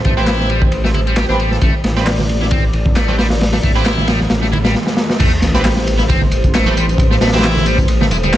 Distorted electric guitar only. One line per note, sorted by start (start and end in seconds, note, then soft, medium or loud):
0.05 0.13 A3 medium
0.17 0.49 E4 loud
0.50 0.61 G3 medium
0.84 0.88 A3 medium
0.94 0.99 E4 loud
1.07 1.16 G3 medium
1.17 1.25 G4 medium
1.29 1.38 D4 medium
1.39 1.51 G3 medium
1.52 1.56 A4 medium
1.62 1.73 A3 medium
2.41 2.45 E4 medium
2.51 2.63 C4 medium
2.96 3.07 A3 loud
3.08 3.15 A3 medium
3.18 3.26 G3 loud
3.53 3.57 A3 medium
3.63 3.71 A3 medium
3.75 4.07 E4 loud
4.08 4.19 G3 medium
4.42 4.46 A3 medium
4.53 4.57 E4 loud
4.65 4.74 G3 medium
5.20 5.31 A3 medium
5.99 6.03 E4 medium
6.10 6.21 C4 medium
6.54 6.65 A3 loud
6.67 6.73 A3 medium
6.77 6.85 G3 loud
7.11 7.15 A3 medium
7.22 7.29 A3 medium
7.34 7.65 E4 loud
7.66 7.78 G3 medium
8.01 8.05 A3 medium
8.11 8.16 E4 loud
8.23 8.32 G3 medium
8.34 8.37 G4 medium